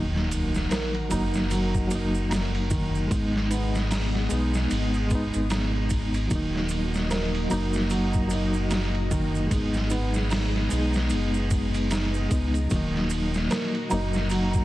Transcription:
Already playing: D#1 D#3 F#3 A#3 D#4 A#4 F#5, sub drop
0.16 snare
0.31 ride, maracas
0.54 snare, maracas
0.71 A#4, snare, ride, maracas
0.95 ride
1.09 F#1 F#3 A#3 D#4, ride, maracas
1.13 D#4
1.34 snare, maracas
1.51 F#3, ride, maracas
1.75 kick, maracas
1.87 F#3 A#3, ride, maracas
1.95 D#4
2.15 maracas
2.30 D#4, snare, ride, maracas
2.55 ride
2.70 D#3, kick, ride, maracas
2.95 maracas
3.07 G#3 B3 G#4 D#5, kick, ride
3.11 G#1 B3, maracas
3.16 D#4
3.36 snare
3.51 B3, ride, maracas
3.75 snare, maracas
3.91 D#4, snare, open hi-hat, maracas
4.15 snare
4.29 B1 G#3 B3, ride, maracas
4.33 D#4
4.54 snare, maracas
4.70 G#1, ride, maracas
4.94 maracas
5.07 G#3 B3, kick, ride, maracas
5.15 D#4
5.34 G#1, ride, maracas
5.50 D#4, snare, ride, maracas
5.90 kick, ride, maracas
6.14 ride, maracas
6.27 D#3 F#3 A#3 F#4, kick, ride, maracas
6.31 D#1 D#4
6.56 snare
6.69 ride, maracas
6.94 snare, maracas
7.11 A#4, snare, ride, maracas
7.35 ride
7.49 F#1 F#3 A#3 D#4, ride, maracas
7.54 D#4
7.73 snare, maracas
7.90 F#3, ride, maracas
8.13 kick, maracas
8.27 F#3, ride, maracas
8.31 A#3
8.36 D#4
8.54 maracas
8.70 D#4, snare, ride, maracas
8.95 ride
9.11 D#3, kick, ride, maracas
9.35 maracas
9.47 G#3 B3 G#4
9.51 G#1 B3, kick, ride, maracas
9.55 D#4
9.74 snare, maracas
9.90 B3, ride, maracas
10.14 snare, maracas
10.30 D#4, snare, open hi-hat, maracas
10.56 snare
10.69 B1 G#3 B3, ride, maracas
10.73 D#4
10.93 snare, maracas
11.10 F#1, ride, maracas
11.34 maracas
11.51 kick, ride, maracas
11.74 ride, maracas
11.91 D#4, snare, ride, maracas
12.14 maracas
12.29 C#2 G#3 B3, kick, ride, maracas
12.33 D#4
12.54 ride, maracas
12.68 D#3 F#3 A#3 F#4 D#5, kick, ride, maracas
12.72 D#1 A#3
12.76 D#4
12.96 snare
13.10 ride, maracas
13.34 snare, maracas
13.51 A#4, snare, ride, maracas
13.75 ride
13.90 F#1 F#3 A#3 D#4, ride, maracas
13.94 D#4
14.13 snare, maracas
14.30 F#3, ride, maracas
14.53 kick, maracas

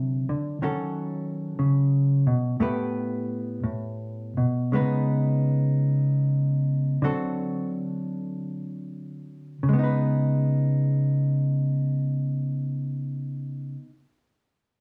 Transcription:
Already playing: C3 D3 F#3 C4 F#4 A4
0.29 D3
0.62 D#3 F#3 C#4 F#4 A4
1.59 C#3
2.27 B2
2.60 A2 A3 B3 G4 B4
3.64 A2
4.37 B2
4.72 C#3 G#3 B3 D#4 B4
7.02 D3 F#3 C4 F#4 A4
9.63 C#3
9.69 G#3
9.73 B3
9.79 D#4
9.84 B4

